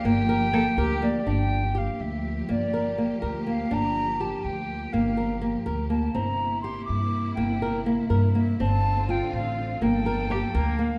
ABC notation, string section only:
X:1
M:5/8
L:1/8
Q:1/4=123
K:Gdor
V:1 name="String section"
[F,B,G]4- [F,B,G] | [F,B,G]4- [F,B,G]- | [F,B,G]4- [F,B,G]- | [F,B,G]4- [F,B,G]- |
[F,B,G]4- [F,B,G] | [C,B,E]4- [C,B,E]- | [C,B,E]4- [C,B,E] | [D,CF]4- [D,CF] |
[F,B,A]4- [F,B,A] |]